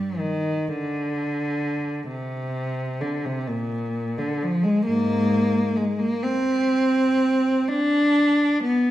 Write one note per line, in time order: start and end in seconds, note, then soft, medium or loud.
0.00 0.15 G2 medium
0.00 0.19 G3 medium
0.18 0.67 D#3 medium
0.68 2.06 D3 medium
2.07 2.98 C3 medium
3.01 3.24 D3 medium
3.25 3.48 C3 medium
3.48 4.17 A#2 medium
4.19 4.41 D3 medium
4.42 4.64 F3 medium
4.64 4.85 G#3 medium
4.85 5.72 G#2 medium
4.85 5.74 A#3 medium
5.76 5.99 G#3 medium
5.99 6.23 A#3 medium
6.23 7.68 C4 medium
7.68 8.63 D4 medium
8.63 8.91 B3 medium